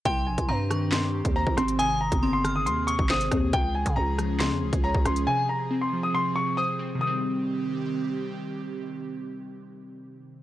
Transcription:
<<
  \new Staff \with { instrumentName = "Synth bell" } { \time 4/4 \key c \phrygian \tempo 4 = 138 c'''4 bes''8 des'''8 r2 | ees'''4 c'''8 f'''4 ees'''8 r4 | r1 | r1 |
r1 | r1 | }
  \new Staff \with { instrumentName = "Grand piano" } { \time 4/4 \key c \phrygian g''8 aes''8 bes''4 c'''4 bes''8 c'''8 | aes''8 bes''8. c'''8 ees'''16 c'''8 des'''8 ees'''4 | g''8 aes''8 bes''4 c'''4 bes''8 c'''8 | aes''8 bes''8. c'''8 ees'''16 c'''8 des'''8 ees'''4 |
ees'''2. r4 | r1 | }
  \new Staff \with { instrumentName = "Analog synth pad" } { \time 4/4 \key c \phrygian << { g'1 | aes'1~ | aes'1~ | aes'1 |
<ees c' g'>1~ | <ees c' g'>1 | } \\ { <ees c'>1~ | <ees c'>1 | <f des'>1 | <f c'>1 |
r1 | r1 | } >> }
  \new Staff \with { instrumentName = "Synth keys" } { \clef bass \time 4/4 \key c \phrygian c8 c8 c'8 ees8 c8 c8 c''8 c'8 | c8 c8 c'8 ees8 c8 c8 c''8 c'8 | des8 des8 des'8 f8 des8 des8 des''8 des'8 | c8 c8 c'8 f8 c8 c8 c''8 c'8 |
<c ees g c'>1~ | <c ees g c'>1 | }
  \new Staff \with { instrumentName = "808-style bass" } { \clef bass \time 4/4 \key c \phrygian c,8 bes,,16 c,16 g,4.~ g,16 ees,8 c,16 aes,,8~ | aes,,8. g,,4~ g,,16 ees,8. aes,,8. ees,8 | des,8. des16 des,4~ des,16 f,16 des,16 des,8 des,16 des,8 | r1 |
r1 | r1 | }
  \new DrumStaff \with { instrumentName = "Drums" } \drummode { \time 4/4 <hh bd>8. <hh bd>16 r8 <hh ss>8 <hc hh sn>8. <hh bd>16 r16 bd16 <hh ss>16 hh16 | hh8. <hh bd>16 r8 <hh ss>8 hh8 hh16 bd16 <hc sn>16 hh16 <hh bd ss>8 | <hh bd>8. <hh bd>16 r8 <hh ss>8 <hc hh sn>8. <hh bd>16 r16 bd16 <hh ss>16 hh16 | r4 r4 r4 r4 |
r4 r4 r4 r4 | r4 r4 r4 r4 | }
>>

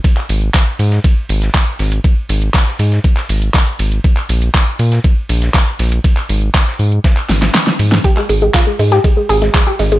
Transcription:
<<
  \new Staff \with { instrumentName = "Synth arpeggio sound" } { \clef bass \time 4/4 \key c \phrygian \tempo 4 = 120 r1 | r1 | r1 | r1 |
g'16 aes16 aes16 aes16 f'16 aes16 aes16 g'16 aes16 aes16 aes'16 aes16 aes16 g'16 aes16 aes16 | }
  \new Staff \with { instrumentName = "Analog synth bass" } { \clef bass \time 4/4 \key c \phrygian r8 aes,,8 r8 aes,8 r8 aes,,8 r8 aes,,8 | r8 aes,,8 r8 aes,8 r8 aes,,8 r8 aes,,8 | r8 bes,,8 r8 bes,8 r8 bes,,8 r8 bes,,8 | r8 aes,,8 r8 aes,8 r8 aes,,8 r8 aes,8 |
r8 aes,,8 r8 aes,8 r8 aes,,8 r8 aes,,8 | }
  \new DrumStaff \with { instrumentName = "Drums" } \drummode { \time 4/4 <hh bd cymr>16 hc16 <hho cymr>16 hh16 <hc hh bd cymr sn>8 <hho cymr>16 <hh sn>16 <hh bd cymr>8 <hho cymr>16 <hh sn>16 <hc hh bd cymr sn>8 <hho cymr sn>16 <hh cymr>16 | <hh bd cymr>8 <hho cymr>16 hh16 <hc hh bd cymr sn>16 sn16 <hho cymr>16 <hh sn>16 <hh bd cymr>16 <hc sn>16 <hho cymr>16 hh16 <hc hh hho bd sn>16 cymr16 <hho cymr>16 hh16 | <hh bd cymr>16 hc16 <hho cymr>16 hh16 <hc hh bd cymr sn>8 <hho cymr>16 <hh sn>16 <hh bd cymr>8 <hho cymr>16 <hh sn>16 <hc hh bd cymr sn>8 <hho cymr sn>16 <hh cymr>16 | <hh bd cymr>16 hc16 <hho cymr>16 hh16 <hc hh bd cymr sn>16 sn16 hho16 hh16 <hh bd cymr sn>16 hc16 <hho cymr sn>16 <hh cymr sn>16 <hc hh cymr sn>16 sn16 <hho cymr>16 <hh sn>16 |
<hh bd cymr>16 <hc ss>16 <hho cymr>16 hh16 <hc hh bd cymr sn>8 <hho cymr>16 <hh sn>16 <hh bd cymr>8 <hho cymr>16 <hh sn>16 <hc hh bd cymr sn>16 ss16 <hho cymr sn>16 <hh cymr>16 | }
>>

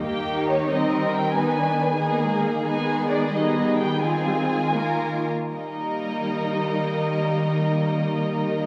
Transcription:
<<
  \new Staff \with { instrumentName = "Violin section" } { \time 6/8 \key ees \major \tempo 4. = 85 g''4 des''8 ees''4 g''8 | aes''2~ aes''8 r8 | aes''4 d''8 ees''4 g''8 | aes''2~ aes''8 r8 |
ees''2.~ | ees''2. | }
  \new Staff \with { instrumentName = "Violin section" } { \time 6/8 \key ees \major << { g'4. bes'4. | ces''4. aes'4.~ | aes'2. | aes'4. bes'4 r8 |
bes'2.~ | bes'2. | } \\ { ees'2. | ees'8 d'8 d'8 ees'4. | ees'4. ees'4. | f'4. f'4 r8 |
ees'2.~ | ees'2. | } >> }
  \new Staff \with { instrumentName = "Viola section" } { \time 6/8 \key ees \major << { bes4. g4. | ces'4. ces'8 aes8 bes8 | ces'4. ces'4. | c'4. bes4 r8 |
bes2.~ | bes2. | } \\ { bes4. c'4. | ces'4. bes4. | aes4. g4. | f8 g8 aes8 bes4 r8 |
g2.~ | g2. | } >> }
  \new Staff \with { instrumentName = "Cello section" } { \clef bass \time 6/8 \key ees \major ees2.~ | ees2. | ees2.~ | ees2~ ees8 r8 |
ees2.~ | ees2. | }
>>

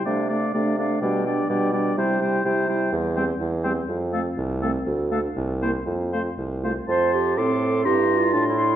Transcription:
<<
  \new Staff \with { instrumentName = "Flute" } { \time 2/4 \key c \major \tempo 4 = 124 f''8 f''8 f''8 f''8 | g''8 g''8 g''8 g''8 | g''8 g''8 g''8 g''8 | \key f \major r8 g''8 r8 g''8 |
r8 f''8 r8 f''8 | r8 f''8 r8 g''8 | r8 f''8 r8 f''8 | c'''4 d'''4 |
c'''4 c'''4 | }
  \new Staff \with { instrumentName = "Oboe" } { \time 2/4 \key c \major d''8 d''8 d''8 d''8 | d''8 d''8 d''8 d''8 | c''8 c''8 c''8 c''8 | \key f \major r8 c''8 r8 c''8 |
r8 a'8 r8 a'8 | r8 a'8 r8 c''8 | r8 c''8 r8 c''8 | a''4 c'''4 |
bes''4 a''8 c'''8 | }
  \new Staff \with { instrumentName = "Clarinet" } { \time 2/4 \key c \major d'8 d'8 d'8 d'8 | d'8 d'8 d'8 d'8 | e'8 e'8 e'8 e'8 | \key f \major r8 c'8 r8 c'8 |
r8 c'8 r8 c'8 | r8 d'8 r8 e'8 | r8 f'8 r8 f'8 | c''8 g'8 a'4 |
\tuplet 3/2 { g'4 f'8~ f'8 e'4 } | }
  \new Staff \with { instrumentName = "French horn" } { \time 2/4 \key c \major a8 a8 a8 a8 | g8 g8 g8 g8 | g8 g8 g8 g8 | \key f \major r8 g8 r8 g8 |
r8 a8 r8 a8 | r8 a8 r8 bes8 | r8 a8 r8 a8 | r4 c'4 |
e'4 d'4 | }
  \new Staff \with { instrumentName = "Bassoon" } { \clef bass \time 2/4 \key c \major c4 c4 | b,4 b,4 | c4 c4 | \key f \major e,4 e,4 |
f,4 c,4 | d,4 c,4 | f,4 c,4 | f,4 a,4 |
g,4 a,4 | }
>>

